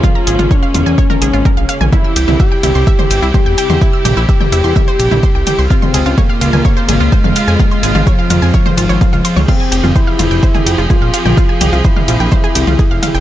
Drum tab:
CC |----------------|----------------|----------------|----------------|
RD |----------------|--x---x---x---x-|--x---x---x---x-|--x---x---x---x-|
HH |--x---x---x---x-|--x---x---x---x-|--x---x---x---x-|--x---x---x---x-|
SH |x-xxxxxxxxxxxxxx|x-xxx-xxxxxxx-xx|x-xxx-xxxxxxx-xx|x-xxx-xxxxxxx-xx|
T2 |o--o--o--o--o--o|o--o--o--o--o--o|--o--o--o--o--o-|-o--o--o--o--o--|
BD |o---o---o---o---|o---o---o---o---|o---o---o---o---|o---o---o---o---|

CC |----------------|x---------------|----------------|
RD |--x---x---x---x-|--x---x---x---x-|--x---x---x---x-|
HH |--x---x---x---x-|--x---x---x---x-|--x---x---x---x-|
SH |xxxxx-xxxxxxxxxx|x-xxx-xxxxxxx-xx|x-xxx-xxxxxxx-xx|
T2 |o--o--o--o--o--o|o--o--o--o--o--o|--o--o--o--o--o-|
BD |o---o---o---o---|o---o---o---o---|o---o---o---o---|